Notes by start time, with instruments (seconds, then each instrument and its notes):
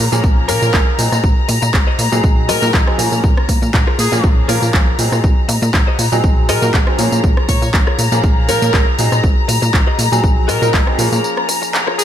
Already playing: string section A#5
0.12 analog synth bass A#2, grand piano F3 A#3 C#4 G#4, tambourine
0.23 analog synth bass A#1, grand piano F3 A#3, muted clean electric guitar stroke, kick, tambourine
0.48 analog synth bass A#2, grand piano F3 A#3 C#4 A#4, clean electric guitar F4 G#4 A#4 C#5, horn section A#4, open hi-hat, tambourine
0.62 analog synth bass A#2, tambourine
0.73 analog synth bass A#1, grand piano F3 A#3 C#4 G#4, clean electric guitar F5, kick, clap, tambourine
0.98 analog synth bass A#2, grand piano F#3 C4 D#4 G#4, clean electric guitar A#5, open hi-hat, tambourine
1.12 analog synth bass A#2, cross-stick, tambourine
1.24 analog synth bass A#1, kick, tambourine
1.48 analog synth bass A#2, muted clean electric guitar stroke, open hi-hat, tambourine
1.62 analog synth bass A#2, muted clean electric guitar stroke, tambourine
1.74 analog synth bass A#1, kick, clap, tambourine
1.87 clean electric guitar F#4 G#4 C5 D#5
1.99 analog synth bass A#2, open hi-hat, tambourine
2.12 analog synth bass A#2, grand piano F#3 C4 D#4 G#4, tambourine
2.23 analog synth bass A#1, muted clean electric guitar stroke, kick, tambourine
2.49 analog synth bass A#2, clean electric guitar F#4 G#4 C5 D#5, horn section A#4, cross-stick, open hi-hat, tambourine
2.62 analog synth bass A#2, grand piano F#3 C4 D#4 A#4, tambourine
2.74 analog synth bass A#1, kick, clap, tambourine
2.87 grand piano F#3 C4 D#4 G#4, cross-stick
2.98 analog synth bass A#2, grand piano F3 A#3 C#4 G#4, clean electric guitar F4 G#4 A#4 C#5, open hi-hat, tambourine
3.12 analog synth bass A#2, tambourine
3.24 analog synth bass A#1, kick, tambourine
3.37 cross-stick
3.49 analog synth bass A#2, muted clean electric guitar stroke, kick, open hi-hat, tambourine
3.62 analog synth bass A#2, muted clean electric guitar stroke, tambourine
3.74 analog synth bass A#1, kick, clap, tambourine
3.87 clean electric guitar F4 G#4 A#4 C#5, cross-stick
3.99 analog synth bass A#2, horn section G#4, open hi-hat, tambourine
4.12 analog synth bass A#2, grand piano F3 A#3 C#4 G#4, tambourine
4.23 analog synth bass A#1, grand piano F3 A#3 C#4, muted clean electric guitar stroke, kick, tambourine
4.48 analog synth bass A#2, grand piano F3 A#3 C#4 A#4, clean electric guitar F4 G#4 A#4 C#5, open hi-hat, tambourine
4.62 analog synth bass A#2, tambourine
4.74 analog synth bass A#1, grand piano F3 A#3 C#4, kick, clap, tambourine
4.98 analog synth bass A#2, grand piano F#3 C4 D#4 G#4, open hi-hat, tambourine
5.12 analog synth bass A#2, cross-stick, tambourine
5.24 analog synth bass A#1, string section A#5, kick, tambourine
5.49 analog synth bass A#2, muted clean electric guitar stroke, open hi-hat, tambourine
5.62 analog synth bass A#2, muted clean electric guitar stroke, tambourine
5.74 analog synth bass A#1, muted clean electric guitar stroke, kick, clap, tambourine
5.87 clean electric guitar F#4 G#4 C5 D#5
5.99 analog synth bass A#2, open hi-hat, tambourine
6.12 analog synth bass A#2, grand piano F#3 C4 D#4 G#4, tambourine
6.24 analog synth bass A#1, muted clean electric guitar stroke, kick, tambourine
6.49 analog synth bass A#2, clean electric guitar F#4 G#4 C5 D#5, horn section A#4, cross-stick, open hi-hat, tambourine
6.62 analog synth bass A#2, grand piano F#3 C4 D#4 A#4, tambourine
6.74 analog synth bass A#1, kick, clap, tambourine
6.87 grand piano F#3 C4 D#4 G#4, cross-stick
6.98 analog synth bass A#2, grand piano F3 A#3 C#4 G#4, clean electric guitar F4 G#4 A#4 C#5, open hi-hat, tambourine
7.12 analog synth bass A#2, tambourine
7.24 analog synth bass A#1, kick, tambourine
7.37 cross-stick
7.48 analog synth bass A#2, horn section C#5, muted clean electric guitar stroke, kick, open hi-hat, tambourine
7.62 analog synth bass A#2, muted clean electric guitar stroke, tambourine
7.74 analog synth bass A#1, muted clean electric guitar stroke, kick, clap, tambourine
7.87 clean electric guitar F4 G#4 A#4 C#5, cross-stick
7.99 analog synth bass A#2, open hi-hat, tambourine
8.12 analog synth bass A#2, grand piano F3 A#3 C#4 G#4, tambourine
8.24 analog synth bass A#1, grand piano F3 A#3 C#4, muted clean electric guitar stroke, kick, tambourine
8.48 analog synth bass A#2, grand piano F3 A#3 C#4 A#4, clean electric guitar F4 G#4 A#4 C#5, horn section A#4, open hi-hat, tambourine
8.62 analog synth bass A#2, tambourine
8.73 analog synth bass A#1, grand piano F3 A#3 C#4 G#4, kick, clap, tambourine
8.98 analog synth bass A#2, grand piano F#3 C4 D#4 G#4, open hi-hat, tambourine
9.12 analog synth bass A#2, cross-stick, tambourine
9.24 analog synth bass A#1, kick, tambourine
9.48 analog synth bass A#2, muted clean electric guitar stroke, open hi-hat, tambourine
9.62 analog synth bass A#2, muted clean electric guitar stroke, tambourine
9.73 analog synth bass A#1, muted clean electric guitar stroke, kick, clap, tambourine
9.87 clean electric guitar F#4 G#4 C5 D#5
9.99 analog synth bass A#2, open hi-hat, tambourine
10.12 analog synth bass A#2, grand piano F#3 C4 D#4 G#4, tambourine
10.23 analog synth bass A#1, muted clean electric guitar stroke, kick, tambourine
10.48 analog synth bass A#2, clean electric guitar F#4 G#4 C5 D#5, horn section A#4, cross-stick, open hi-hat, tambourine
10.62 analog synth bass A#2, grand piano F#3 C4 D#4 A#4, tambourine
10.74 analog synth bass A#1, kick, clap, tambourine
10.87 grand piano F#3 C4 D#4 G#4, cross-stick
10.98 analog synth bass A#2, grand piano F3 A#3 C#4 G#4, clean electric guitar F4 G#4 A#4 C#5, open hi-hat, tambourine
11.12 analog synth bass A#2, tambourine
11.24 tambourine
11.37 cross-stick
11.48 muted clean electric guitar stroke, open hi-hat, tambourine
11.62 muted clean electric guitar stroke, tambourine
11.73 muted clean electric guitar stroke, clap, tambourine
11.87 clean electric guitar F4 G#4 A#4 C#5, cross-stick
11.99 horn section G#4, open hi-hat, tambourine